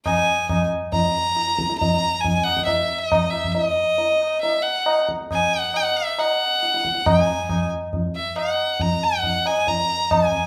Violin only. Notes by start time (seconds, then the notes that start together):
0.05 G#5
0.93 A#5
1.78 A#5
2.21 G#5
2.43 F#5
2.65 E5
2.98 D#5
3.30 E5
3.52 E5
3.64 D#5
4.41 E5
4.62 F#5
5.33 G#5
5.59 F#5
5.76 F#5
5.97 E5
6.20 F#5
7.06 G5
7.21 G#5
8.15 E5
8.37 F#5
8.81 A#5
9.03 F#5
9.47 G#5
9.68 A#5
10.11 G#5